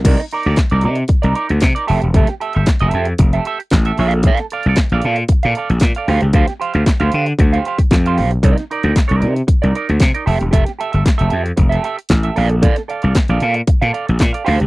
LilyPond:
<<
  \new Staff \with { instrumentName = "Clean electric guitar" } { \time 4/4 \key f \major \tempo 4 = 114 <ees' bes' d''>16 r16 <ees' bes' d''>16 <ees' bes' d''>16 r16 <ees' bes' d''>16 <ees' bes' d''>16 r8 <ees' bes' d''>16 <ees' bes' d''>16 r8 <ees' bes' d''>16 <g' a' e''>16 r16 | <g' a' e''>16 r16 <g' a' e''>16 <g' a' e''>16 r16 <g' a' e''>16 <g' a' e''>16 r8 <g' a' e''>16 <g' a' e''>16 r8 <g' a' e''>16 <a' d'' f''>8 | <a' d'' f''>8 <a' d'' f''>16 <a' d'' f''>16 r16 <a' d'' f''>16 <a' d'' f''>16 r8 <a' d'' f''>16 <a' d'' f''>16 r8 <a' d'' f''>16 <g' c'' f''>16 r16 | <g' c'' f''>16 r16 <g' c'' f''>16 <g' c'' f''>16 r16 <g' c'' f''>16 <g' c'' f''>16 r8 <g' c'' f''>16 <g' c'' f''>16 r8 <g' c'' f''>16 <g' c'' f''>16 r16 |
<ees' bes' d''>8 <ees' bes' d''>16 <ees' bes' d''>16 r16 <ees' bes' d''>16 <ees' bes' d''>16 r8 <ees' bes' d''>16 <ees' bes' d''>16 r8 <ees' bes' d''>16 <g' a' e''>16 r16 | <g' a' e''>16 r16 <g' a' e''>16 <g' a' e''>16 r16 <g' a' e''>16 <g' a' e''>16 r8 <g' a' e''>16 <g' a' e''>16 r8 <g' a' e''>16 <a' d'' f''>16 r16 | <a' d'' f''>16 r16 <a' d'' f''>16 <a' d'' f''>16 r16 <a' d'' f''>16 <a' d'' f''>16 r8 <a' d'' f''>16 <a' d'' f''>16 r8 <a' d'' f''>16 <g' c'' f''>16 r16 | }
  \new Staff \with { instrumentName = "Slap bass" } { \clef bass \time 4/4 \key f \major c,16 r8 d,16 r16 c,16 c8 r16 c,16 r16 d,16 c16 r16 f,,16 e,,16 | f,,16 r8 g,,16 r16 f,,16 f,8 f,,8 r8 a,,8 bes,,8~ | bes,,16 r8 c,16 r16 bes,,16 bes,8 r16 bes,16 r16 bes,,16 bes,16 r16 d,16 des,16 | d,16 r8 d,16 r16 d,16 d8 d,8 r8 f,8 b,,8 |
c,16 r8 d,16 r16 c,16 c8 r16 c,16 r16 d,16 c16 r16 f,,16 e,,16 | f,,16 r8 g,,16 r16 f,,16 f,8 f,,8 r8 a,,8 bes,,8~ | bes,,16 r8 c,16 r16 bes,,16 bes,8 r16 bes,16 r16 bes,,16 bes,16 r16 d,16 des,16 | }
  \new DrumStaff \with { instrumentName = "Drums" } \drummode { \time 4/4 <cymc hh bd>16 <hh sn>16 hh16 hh16 <hc hh bd sn>16 hh16 hh16 hh16 <hh bd>16 hh16 hh16 hh16 <hc hh bd sn>16 hh16 hho16 hh16 | <hh bd>16 <hh sn>16 hh16 hh16 <hc hh bd sn>16 hh16 hh16 hh16 <hh bd>16 hh16 hh16 hh16 <hc hh bd sn>16 hh16 hho16 hh16 | <hh bd>16 <hh sn>16 hh16 hh16 <hc hh bd sn>16 hh16 hh16 hh16 <hh bd>16 hh16 hh16 hh16 <hc hh bd sn>16 hh16 hho16 hh16 | <hh bd>16 <hh sn>16 hh16 hh16 <hc hh bd sn>16 hh16 hh16 hh16 <hh bd>16 hh16 hh16 <hh bd>16 <hc hh bd sn>16 hh16 hho16 hh16 |
<hh bd>16 <hh sn>16 hh16 hh16 <hc hh bd sn>16 hh16 hh16 hh16 <hh bd>16 hh16 hh16 hh16 <hc hh bd sn>16 hh16 hho16 hh16 | <hh bd>16 <hh sn>16 hh16 hh16 <hc hh bd sn>16 hh16 hh16 hh16 <hh bd>16 hh16 hh16 hh16 <hc hh bd sn>16 hh16 hho16 hh16 | <hh bd>16 <hh sn>16 hh16 hh16 <hc hh bd sn>16 hh16 hh16 hh16 <hh bd>16 hh16 hh16 hh16 <hc hh bd sn>16 hh16 hho16 hh16 | }
>>